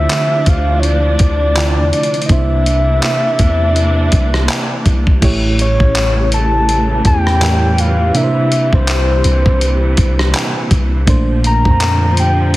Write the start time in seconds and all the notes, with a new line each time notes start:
Already playing: C3 D3 F3 A3 D4 E4 F4 C5 E5
0.10 clap, closed hi-hat
0.46 D2 F5, kick, closed hi-hat
0.79 C#5, closed hi-hat
0.85 D5
1.19 D2, kick, closed hi-hat
1.56 D3 A3 E4 F4 D5, clap, closed hi-hat
1.78 E2
1.93 closed hi-hat
2.03 closed hi-hat
2.14 closed hi-hat
2.22 closed hi-hat
2.26 C2 C3 E3 A#3 D4 D#5, kick, closed hi-hat
2.30 D4 E4 C5 E5
2.66 closed hi-hat
3.02 clap, closed hi-hat
3.39 E2, kick, closed hi-hat
3.76 closed hi-hat
4.12 C2, kick, closed hi-hat
4.34 cross-stick
4.48 clap, closed hi-hat
4.86 C2, kick, closed hi-hat
5.07 C2, kick
5.21 A1 A2 C#3 E3 G3 A3 E4 G4 C#5, kick, closed hi-hat, crash
5.59 C#5, closed hi-hat
5.80 A1, kick
5.95 clap, closed hi-hat
6.32 A5, closed hi-hat
6.69 closed hi-hat
7.05 E2 G5, kick, closed hi-hat
7.27 cross-stick
7.41 A2 E3 A3 G4 A#4, clap, closed hi-hat
7.49 C#5
7.78 F5, closed hi-hat
8.13 A#2 C3 A#3 D4 E4 A#4 E5, closed hi-hat
8.23 C5
8.52 closed hi-hat
8.73 C2 C5, kick
8.88 clap, closed hi-hat
9.24 C2, closed hi-hat
9.46 C2, kick
9.61 closed hi-hat
9.97 C2, kick, closed hi-hat
10.19 cross-stick
10.34 clap, closed hi-hat
10.71 C2, kick, closed hi-hat
11.06 A#1 A#2 D3 F3 A3 A#3 D4 C5, kick, closed hi-hat
11.44 A#5, closed hi-hat
11.65 F2, kick
11.80 clap, closed hi-hat
12.17 G5, closed hi-hat